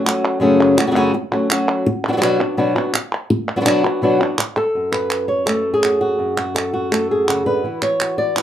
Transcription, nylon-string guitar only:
0.04 F#3 A3 C#4 F#4
0.40 F#2 C#3 F#3 A3 C#4 F#4
0.77 F#3 A3 C#4 F#4
0.87 C#3 F#3 A3 C#4 F#4
0.91 C#3 F#3 A3 C#4 F#4
0.96 F#2 C#3 F#3 A3 C#4 F#4
1.14 muted nylon-string guitar stroke
1.32 F#3 A3 C#4 F#4
1.50 F#3 A3 C#4 F#4
1.86 muted nylon-string guitar stroke
2.08 F#3 B3 D4 F#4
2.13 F#3 B3 D4 F#4
2.17 F#3 B3 D4 F#4
2.21 B2 F#3 B3 D4 F#4
2.39 B3 D4 F#4
2.57 B2 F#3 B3 D4 F#4
2.75 B3 D4 F#4
2.93 muted nylon-string guitar stroke
3.30 muted nylon-string guitar stroke
3.56 F#3 B3 D4 F#4
3.60 F#3 B3 D4 F#4
3.65 B2 F#3 B3 D4 F#4
3.84 B3 D4 F#4
4.02 B2 F#3 B3 D4 F#4
4.20 B3 D4 F#4
4.38 muted nylon-string guitar stroke
4.57 A4
4.75 F#2
4.92 B4
5.28 C#5
5.46 A3 A4
5.74 G#4
5.85 F#4
6.01 F#4
6.19 F#2
6.37 F#4
6.55 A4
6.73 F#4
6.91 A3 A4
7.11 G#4
7.27 C#3 F#4
7.46 D3 B4
7.64 E3 E4 F#4
7.82 C#5
8.01 F#4
8.18 D5
8.36 E4 B4

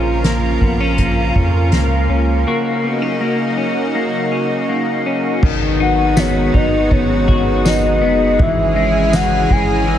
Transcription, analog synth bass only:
Already playing: A#1
0.61 A#1
1.35 F2
1.72 C#2
2.09 C#2
5.43 G#1
6.54 G#1
6.91 G#1
8.02 F#1
8.39 G#1
9.50 G#1
9.87 G#1

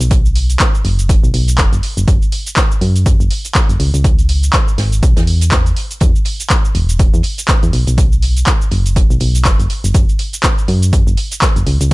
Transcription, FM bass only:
0.01 B1
0.85 F#1
1.24 B1
1.34 B1
1.58 F#1
1.73 F#1
1.97 F#1
2.08 F#1
2.81 F#2
3.20 F#1
3.69 F#1
3.80 C#2
3.94 C#2
4.78 G#1
5.03 B1
5.17 E2
6.01 E2
6.75 E1
7.14 E2
7.63 E2
7.73 B1
7.87 B1
8.72 F#1
9.10 B1
9.21 B1
9.45 F#1
9.60 F#1
9.84 F#1
9.95 F#1
10.68 F#2
11.07 F#1
11.56 F#1
11.67 C#2
11.81 C#2

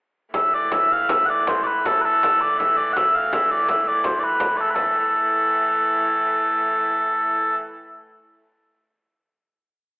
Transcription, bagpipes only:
0.35 E5
0.54 D5
0.73 E5
0.92 F5
1.10 E5
1.26 D5 F#5
1.48 C5
1.63 B4 D5
1.86 A4
2.01 A4 B4
2.41 D5
2.58 E5
2.77 D5
2.93 E5 F#5
3.15 F5
3.33 E5
3.51 D5
3.69 E5
3.88 D5
4.05 C5
4.19 D5
4.24 B4
4.57 A4 D5
4.70 B4
4.74 A4

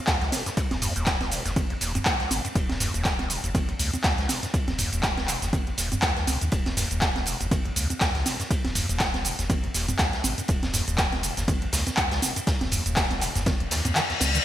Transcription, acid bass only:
0.07 D#2
0.21 C#2
0.32 D#1
0.46 F#2
0.57 D#2
0.71 D#2
0.82 D#2
0.96 D#2
1.07 D#2
1.21 C#2
1.32 D#1
1.46 D#2
1.56 D#3
1.70 D#2
1.81 D#2
1.95 D#2
2.06 D#2
2.20 C#2
2.31 D#1
2.45 F#2
2.55 D#2
2.69 D#2
2.80 D#2
2.94 D#2
3.05 D#2
3.19 C#2
3.30 D#1
3.44 D#2
3.55 D#3
3.69 D#2
3.80 D#2
3.94 D#2
4.04 D#2
4.18 C#2
4.29 D#1
4.43 F#2
4.54 D#2
4.68 D#2
4.78 D#2
4.92 D#2
5.03 D#2
5.17 C#2
5.28 D#1
5.42 D#2
5.53 D#3
5.67 D#2
5.78 D#2
5.92 D#2
6.03 D#2
6.17 C#2
6.27 D#1
6.41 F#2
6.52 D#2
6.66 D#2
6.77 D#2
6.91 D#2
7.02 D#2
7.16 C#2
7.27 D#1
7.41 D#2
7.51 D#3
7.65 D#2
7.76 D#2
7.90 D#2
8.01 D#2
8.15 C#2
8.26 D#1
8.40 F#2
8.51 D#2
8.65 D#2
8.75 D#2
8.89 D#2
9.14 C#2
9.25 D#1
9.39 D#2
9.50 D#3
9.64 D#2
9.74 D#2
9.89 D#2
9.99 D#2
10.13 C#2
10.24 D#1
10.38 F#2
10.49 D#2
10.63 D#2
10.74 D#2
10.88 D#2
10.98 D#2
11.13 C#2
11.23 D#1
11.37 D#2
11.48 D#3
11.62 D#2
11.73 D#2
11.87 D#2
11.98 D#2
12.12 C#2
12.23 D#1
12.36 F#2
12.47 D#2
12.61 D#2
12.72 D#2
12.86 D#2
12.97 D#2
13.11 C#2
13.22 D#1
13.36 D#2
13.46 D#3
13.60 D#2
13.71 D#2
13.85 D#2
13.96 D#3
14.10 D#2
14.21 D#1
14.35 D#3

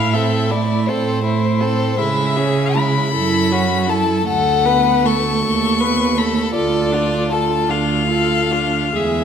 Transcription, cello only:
Already playing: A2
0.88 A2
1.99 C#3
3.15 F#2
4.27 D2
5.43 D#2
6.54 D2
7.71 D2
8.95 E2

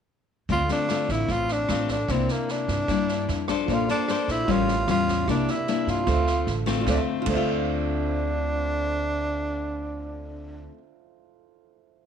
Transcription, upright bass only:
0.49 D2
1.09 A1
1.28 A1
1.69 A1
2.09 C2
2.68 G2
2.88 G2
3.28 F2
3.68 A#1
4.28 A#1
4.48 A1
4.88 E2
5.28 C2
5.87 G2
6.07 D2
6.47 A1
6.87 D2
7.26 D2

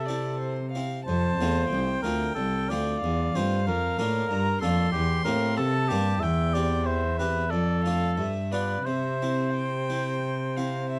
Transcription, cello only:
Already playing: C3
1.07 F2
1.38 E2
1.71 C2
2.04 D2
2.37 C2
2.71 D2
3.04 E2
3.36 G2
3.68 F2
4.00 A2
4.31 G2
4.63 F2
4.94 E2
5.27 A2
5.59 C3
5.91 G2
6.23 E2
7.51 F2
8.16 G2
8.85 C3

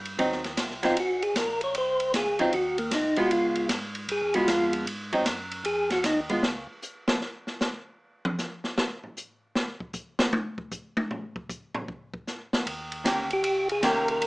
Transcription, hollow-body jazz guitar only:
0.19 F#3 C4 D#4
0.83 F#3 C4 D#4
2.39 F#3 C4 D#4
3.17 G#3 B3 F4
4.35 G#3 B3 F4
5.13 F#3 C4 D#4
6.30 G#3 B3 F4
13.04 D#3 A#3 C#4 G4
13.83 D#3 A#3 C#4 G4

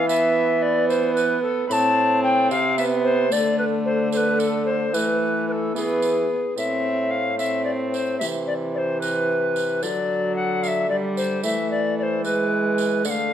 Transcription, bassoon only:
Already playing: E3
1.70 A2
2.51 C3
3.32 D3
4.94 E3
5.75 E3
6.57 A2
8.20 C3
9.82 D3
11.43 E3
13.04 D3

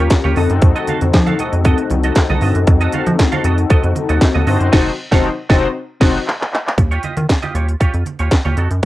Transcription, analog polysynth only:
Already playing: C#4 F4 G4 A#4
0.36 C4 D#4 F#4 A4
4.46 C4 D#4 F#4 C5
4.72 C4 D#4 F#4 C5
5.11 C4 D#4 F#4 C5
5.49 C4 D#4 F#4 C5
6.00 C4 D#4 F#4 C5

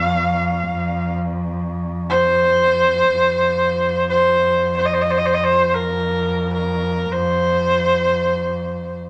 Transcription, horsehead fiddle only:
Already playing: F5
2.10 C5
4.10 C5
4.77 C5
4.86 D#5
4.94 C5
5.02 D#5
5.11 C5
5.18 D#5
5.26 C5
5.34 D#5
5.44 C5
5.74 A#4
6.54 A#4
7.12 C5

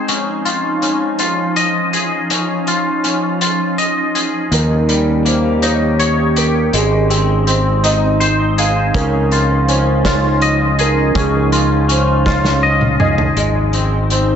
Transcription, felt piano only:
4.53 A#4
5.27 C5
5.63 C#5
6.37 A#4
6.75 G#4
7.48 C5
7.85 D#5
8.59 F5
8.95 A#4
9.68 C5
10.06 C#5
10.80 A#4
11.17 G#4
11.91 C5
12.27 C#5
13.00 D#5
13.39 D#5
14.12 C5

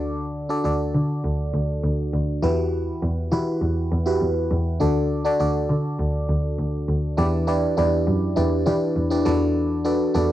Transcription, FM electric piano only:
Already playing: D3 D4 F#4 A4 D5
0.49 D4 F#4 A4 D5
0.64 D4 F#4 A4 D5
2.42 E3 E4 F#4 G4 B4
3.31 E4 F#4 G4 B4
4.06 E4 F#4 G4 B4
4.80 D3 D4 F#4 A4 D5
5.25 D4 F#4 A4 D5
5.39 D4 F#4 A4 D5
7.17 E3 D4 E4 G4 B4 D5
7.47 D4 E4 G4 B4 D5
7.77 D4 E4 G4 B4 D5
8.36 D4 E4 G4 B4 D5
8.66 D4 E4 G4 B4 D5
9.10 D4 E4 G4 B4 D5
9.25 E3 D4 F#4 A4 B4 D5
9.84 D4 F#4 A4 B4 D5
10.14 D4 F#4 A4 B4 D5

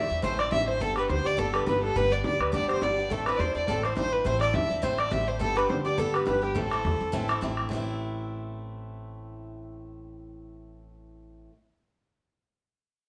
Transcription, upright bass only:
0.11 E2
0.24 A1
0.52 A1
0.80 G1
1.10 D2
1.38 G1
1.67 G1
1.96 G1
2.24 D2
2.40 D2
2.54 G1
2.82 G1
3.11 A1
3.40 E2
3.55 E2
3.68 A1
3.97 A1
4.26 A1
4.55 E2
4.71 E2
4.84 A1
5.12 A1
5.41 G1
5.69 D2
5.85 D2
5.98 G1
6.27 G1
6.56 A1
6.85 E2
7.01 E2
7.13 A1
7.42 A1
7.71 A1

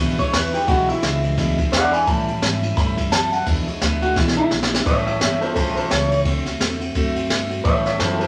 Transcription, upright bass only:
0.00 G#1
0.33 E2
0.68 B1
1.03 C#2
1.38 D2
1.72 E2
2.07 A2
2.42 G#2
2.77 G2
3.11 F#2
3.47 E2
3.67 muted upright bass stroke
3.81 D2
4.16 B1
4.51 A#1
4.86 A1
5.21 G1
5.56 B1
5.91 C#2
6.25 D2
6.60 E2
6.95 F#2
7.30 G2
7.65 A2
7.99 F#2

